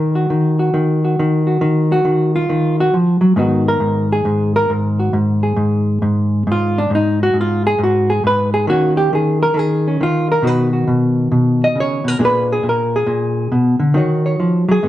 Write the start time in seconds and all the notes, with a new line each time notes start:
Already playing: D#3 A#4
0.15 F#4
0.30 D#3
0.59 F#4
0.74 D#3
1.05 F#4
1.19 D#3
1.47 F#4
1.61 D#3
1.92 F#4
2.05 D#3
2.36 F4
2.49 D#3
2.80 F#4
2.94 F3
3.21 F#3
3.36 G#2 D#3 B3 D#4 F#4
3.68 A#4
3.80 G#2
4.12 G#4
4.25 G#2
4.56 A#4
4.70 G#2
5.00 F#4
5.13 G#2
5.43 G#4
5.57 G#2
6.02 G#2
6.47 G#2
6.52 F4
6.78 D4
6.90 G#2
6.95 D#4
7.23 F#4
7.33 G#2
7.41 F4
7.67 G#4
7.79 G#2
7.83 F#4
8.10 G#4
8.24 G#2 B4
8.54 G#4
8.67 D#3 A#3 C#4 F#4
8.97 G4
9.13 D#3 G#4
9.43 A#4
9.54 D#3
9.59 G#4
9.88 C#4
10.01 D#3 F4
10.32 A#4
10.42 B2 D#3 D#4 F#4
10.47 B4
10.73 F#4
10.88 B2
11.32 B2
11.64 D#5
11.76 C#3
11.80 C#5
12.04 B2 A#4
12.19 A#2 A#3 D4 G#4
12.25 B4
12.52 G#4
12.63 A#2
12.69 A#4
12.96 G#4
13.07 A#2
13.52 B2
13.80 D3
13.94 D#3 D#4 F#4 C#5
14.26 C#5
14.40 F3
14.69 F#3 G#4
14.83 G#2 D#3 B3